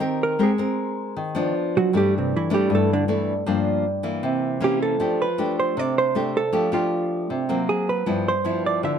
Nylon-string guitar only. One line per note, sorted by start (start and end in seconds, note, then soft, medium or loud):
0.00 0.37 D#3 medium
0.00 0.35 C4 medium
0.00 0.36 G4 medium
0.00 0.36 A#4 medium
0.39 1.14 G#3 medium
0.39 0.50 C4 medium
0.39 0.50 G4 soft
0.39 0.51 A#4 medium
0.58 1.32 C4 medium
0.58 1.32 A#4 medium
1.16 1.52 D#3 medium
1.35 1.89 F3 medium
1.35 1.90 B3 medium
1.35 1.90 D4 medium
1.93 2.68 G2 medium
1.93 2.48 E3 soft
1.93 2.48 A3 medium
1.93 2.48 D4 medium
2.50 3.05 E3 medium
2.50 3.05 A3 medium
2.50 3.05 D4 medium
2.70 3.44 G2 medium
3.08 3.33 E3 medium
3.08 3.33 A3 medium
3.08 3.33 D4 medium
3.46 4.21 G2 medium
3.46 3.84 F3 medium
3.46 3.84 A#3 medium
3.46 3.85 D4 medium
4.03 4.58 E3 medium
4.03 4.58 A#3 medium
4.23 4.98 C3 medium
4.60 4.96 E3 medium
4.60 4.96 A#3 medium
4.60 4.97 C#4 medium
5.00 5.74 F3 medium
5.00 5.24 A3 medium
5.00 5.24 D4 medium
5.00 5.25 G4 medium
5.38 6.12 A3 medium
5.38 6.12 D4 medium
5.38 6.12 G4 medium
5.77 6.51 C3 medium
6.15 6.40 A3 medium
6.15 6.40 D4 medium
6.15 6.40 G4 medium
6.53 7.28 F3 medium
6.53 6.69 A3 soft
6.53 6.69 D4 medium
6.53 6.69 G4 medium
6.72 7.46 A3 medium
6.72 7.46 D4 medium
6.72 7.46 G4 medium
7.30 7.66 C3 medium
7.49 8.03 F#3 medium
7.49 8.04 A#3 medium
7.49 8.04 C4 medium
8.06 8.81 G2 medium
8.06 8.31 F3 soft
8.06 8.31 B3 medium
8.06 8.32 E4 medium
8.44 8.96 F3 medium
8.44 8.96 B3 medium
8.44 8.97 E4 medium
8.83 8.99 D3 medium